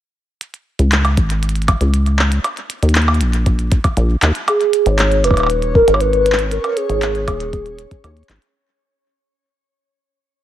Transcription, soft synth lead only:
0, 0, Header, 1, 2, 480
1, 0, Start_track
1, 0, Key_signature, 5, "minor"
1, 0, Tempo, 508475
1, 389, Time_signature, 4, 2, 24, 8
1, 9851, End_track
2, 0, Start_track
2, 0, Title_t, "Soft synth lead"
2, 0, Program_c, 0, 80
2, 4231, Note_on_c, 0, 68, 100
2, 4591, Note_on_c, 0, 73, 118
2, 4605, Note_off_c, 0, 68, 0
2, 4948, Note_on_c, 0, 71, 112
2, 4962, Note_off_c, 0, 73, 0
2, 5423, Note_off_c, 0, 71, 0
2, 5429, Note_on_c, 0, 70, 97
2, 5602, Note_on_c, 0, 73, 76
2, 5616, Note_off_c, 0, 70, 0
2, 5669, Note_on_c, 0, 71, 102
2, 5684, Note_off_c, 0, 73, 0
2, 6148, Note_on_c, 0, 70, 94
2, 6162, Note_off_c, 0, 71, 0
2, 6389, Note_on_c, 0, 68, 94
2, 6403, Note_off_c, 0, 70, 0
2, 6863, Note_off_c, 0, 68, 0
2, 6869, Note_on_c, 0, 68, 91
2, 7791, Note_off_c, 0, 68, 0
2, 9851, End_track
0, 0, End_of_file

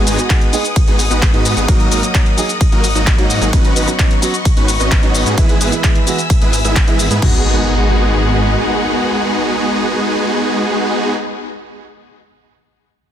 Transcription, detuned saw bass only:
0, 0, Header, 1, 2, 480
1, 0, Start_track
1, 0, Key_signature, 5, "minor"
1, 0, Tempo, 461538
1, 1752, Time_signature, 4, 2, 24, 8
1, 13644, End_track
2, 0, Start_track
2, 0, Title_t, "Detuned saw bass"
2, 0, Program_c, 0, 39
2, 70, Note_on_c, 0, 32, 99
2, 180, Note_off_c, 0, 32, 0
2, 911, Note_on_c, 0, 32, 99
2, 1127, Note_off_c, 0, 32, 0
2, 1150, Note_on_c, 0, 32, 104
2, 1367, Note_off_c, 0, 32, 0
2, 1390, Note_on_c, 0, 44, 102
2, 1607, Note_off_c, 0, 44, 0
2, 1629, Note_on_c, 0, 32, 101
2, 1727, Note_off_c, 0, 32, 0
2, 1751, Note_on_c, 0, 32, 101
2, 1967, Note_off_c, 0, 32, 0
2, 1990, Note_on_c, 0, 32, 96
2, 2100, Note_off_c, 0, 32, 0
2, 2831, Note_on_c, 0, 32, 100
2, 3047, Note_off_c, 0, 32, 0
2, 3071, Note_on_c, 0, 32, 99
2, 3288, Note_off_c, 0, 32, 0
2, 3311, Note_on_c, 0, 44, 103
2, 3527, Note_off_c, 0, 44, 0
2, 3551, Note_on_c, 0, 32, 102
2, 3648, Note_off_c, 0, 32, 0
2, 3671, Note_on_c, 0, 32, 101
2, 3888, Note_off_c, 0, 32, 0
2, 3911, Note_on_c, 0, 32, 101
2, 4020, Note_off_c, 0, 32, 0
2, 4752, Note_on_c, 0, 32, 99
2, 4968, Note_off_c, 0, 32, 0
2, 4992, Note_on_c, 0, 32, 100
2, 5208, Note_off_c, 0, 32, 0
2, 5232, Note_on_c, 0, 32, 102
2, 5448, Note_off_c, 0, 32, 0
2, 5471, Note_on_c, 0, 44, 103
2, 5568, Note_off_c, 0, 44, 0
2, 5592, Note_on_c, 0, 32, 102
2, 5808, Note_off_c, 0, 32, 0
2, 5831, Note_on_c, 0, 32, 97
2, 5941, Note_off_c, 0, 32, 0
2, 6672, Note_on_c, 0, 32, 97
2, 6888, Note_off_c, 0, 32, 0
2, 6911, Note_on_c, 0, 32, 98
2, 7127, Note_off_c, 0, 32, 0
2, 7151, Note_on_c, 0, 32, 101
2, 7368, Note_off_c, 0, 32, 0
2, 7391, Note_on_c, 0, 44, 101
2, 7487, Note_off_c, 0, 44, 0
2, 7512, Note_on_c, 0, 32, 103
2, 8911, Note_off_c, 0, 32, 0
2, 13644, End_track
0, 0, End_of_file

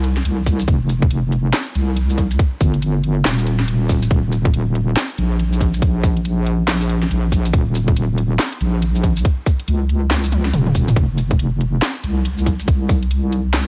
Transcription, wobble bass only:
0, 0, Header, 1, 2, 480
1, 0, Start_track
1, 0, Tempo, 428571
1, 759, Time_signature, 4, 2, 24, 8
1, 15310, End_track
2, 0, Start_track
2, 0, Title_t, "Wobble bass"
2, 0, Program_c, 0, 39
2, 0, Note_on_c, 0, 36, 102
2, 265, Note_off_c, 0, 36, 0
2, 281, Note_on_c, 0, 36, 99
2, 745, Note_off_c, 0, 36, 0
2, 759, Note_on_c, 0, 29, 100
2, 1704, Note_off_c, 0, 29, 0
2, 1961, Note_on_c, 0, 36, 98
2, 2665, Note_off_c, 0, 36, 0
2, 2919, Note_on_c, 0, 31, 98
2, 3624, Note_off_c, 0, 31, 0
2, 3640, Note_on_c, 0, 27, 95
2, 4585, Note_off_c, 0, 27, 0
2, 4600, Note_on_c, 0, 27, 99
2, 5545, Note_off_c, 0, 27, 0
2, 5801, Note_on_c, 0, 34, 98
2, 6505, Note_off_c, 0, 34, 0
2, 6519, Note_on_c, 0, 34, 95
2, 7944, Note_off_c, 0, 34, 0
2, 7960, Note_on_c, 0, 34, 97
2, 8425, Note_off_c, 0, 34, 0
2, 8438, Note_on_c, 0, 27, 98
2, 9384, Note_off_c, 0, 27, 0
2, 9639, Note_on_c, 0, 34, 99
2, 10344, Note_off_c, 0, 34, 0
2, 10840, Note_on_c, 0, 37, 103
2, 11785, Note_off_c, 0, 37, 0
2, 11800, Note_on_c, 0, 27, 98
2, 12265, Note_off_c, 0, 27, 0
2, 12279, Note_on_c, 0, 29, 94
2, 13224, Note_off_c, 0, 29, 0
2, 13479, Note_on_c, 0, 36, 101
2, 14184, Note_off_c, 0, 36, 0
2, 14198, Note_on_c, 0, 36, 100
2, 15310, Note_off_c, 0, 36, 0
2, 15310, End_track
0, 0, End_of_file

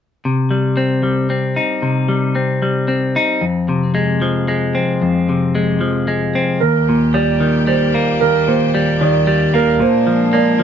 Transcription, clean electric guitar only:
0, 0, Header, 1, 2, 480
1, 0, Start_track
1, 0, Tempo, 531915
1, 212, Time_signature, 3, 2, 24, 8
1, 9593, End_track
2, 0, Start_track
2, 0, Title_t, "Clean electric guitar"
2, 0, Program_c, 0, 27
2, 227, Note_on_c, 0, 48, 38
2, 457, Note_on_c, 0, 55, 32
2, 695, Note_on_c, 0, 60, 39
2, 919, Note_off_c, 0, 55, 0
2, 930, Note_on_c, 0, 55, 32
2, 1169, Note_off_c, 0, 60, 0
2, 1173, Note_on_c, 0, 60, 34
2, 1412, Note_on_c, 0, 63, 35
2, 1418, Note_off_c, 0, 48, 0
2, 1646, Note_on_c, 0, 48, 36
2, 1871, Note_off_c, 0, 55, 0
2, 1882, Note_on_c, 0, 55, 34
2, 2121, Note_off_c, 0, 60, 0
2, 2125, Note_on_c, 0, 60, 37
2, 2357, Note_off_c, 0, 55, 0
2, 2368, Note_on_c, 0, 55, 38
2, 2596, Note_off_c, 0, 60, 0
2, 2599, Note_on_c, 0, 60, 37
2, 2846, Note_off_c, 0, 48, 0
2, 2849, Note_off_c, 0, 63, 0
2, 2852, Note_on_c, 0, 63, 43
2, 3080, Note_on_c, 0, 41, 42
2, 3087, Note_off_c, 0, 55, 0
2, 3108, Note_off_c, 0, 63, 0
2, 3328, Note_on_c, 0, 48, 35
2, 3558, Note_off_c, 0, 60, 0
2, 3561, Note_on_c, 0, 56, 40
2, 3805, Note_on_c, 0, 53, 37
2, 4034, Note_off_c, 0, 56, 0
2, 4045, Note_on_c, 0, 56, 39
2, 4283, Note_off_c, 0, 41, 0
2, 4284, Note_on_c, 0, 60, 39
2, 4527, Note_off_c, 0, 48, 0
2, 4527, Note_on_c, 0, 41, 43
2, 4773, Note_on_c, 0, 48, 37
2, 4999, Note_off_c, 0, 56, 0
2, 5005, Note_off_c, 0, 53, 0
2, 5010, Note_on_c, 0, 56, 40
2, 5241, Note_on_c, 0, 53, 35
2, 5475, Note_off_c, 0, 56, 0
2, 5485, Note_off_c, 0, 60, 0
2, 5486, Note_on_c, 0, 56, 37
2, 5726, Note_off_c, 0, 41, 0
2, 5733, Note_on_c, 0, 60, 38
2, 5963, Note_off_c, 0, 53, 0
2, 5966, Note_off_c, 0, 56, 0
2, 5969, Note_off_c, 0, 48, 0
2, 5969, Note_off_c, 0, 60, 0
2, 5973, Note_on_c, 0, 39, 37
2, 6216, Note_on_c, 0, 46, 36
2, 6445, Note_on_c, 0, 55, 42
2, 6682, Note_on_c, 0, 51, 38
2, 6913, Note_off_c, 0, 55, 0
2, 6924, Note_on_c, 0, 55, 38
2, 7168, Note_on_c, 0, 58, 39
2, 7170, Note_off_c, 0, 39, 0
2, 7410, Note_on_c, 0, 39, 42
2, 7412, Note_off_c, 0, 46, 0
2, 7654, Note_on_c, 0, 46, 36
2, 7881, Note_off_c, 0, 55, 0
2, 7885, Note_off_c, 0, 51, 0
2, 7892, Note_on_c, 0, 55, 42
2, 8131, Note_on_c, 0, 51, 38
2, 8357, Note_off_c, 0, 55, 0
2, 8368, Note_on_c, 0, 55, 44
2, 8603, Note_off_c, 0, 58, 0
2, 8607, Note_on_c, 0, 58, 41
2, 8610, Note_off_c, 0, 39, 0
2, 8833, Note_off_c, 0, 46, 0
2, 8844, Note_on_c, 0, 46, 41
2, 8849, Note_off_c, 0, 55, 0
2, 8850, Note_off_c, 0, 51, 0
2, 9084, Note_on_c, 0, 53, 34
2, 9321, Note_off_c, 0, 58, 0
2, 9321, Note_on_c, 0, 58, 46
2, 9550, Note_off_c, 0, 53, 0
2, 9560, Note_on_c, 0, 53, 39
2, 9593, Note_off_c, 0, 46, 0
2, 9593, Note_off_c, 0, 53, 0
2, 9593, Note_off_c, 0, 58, 0
2, 9593, End_track
0, 0, End_of_file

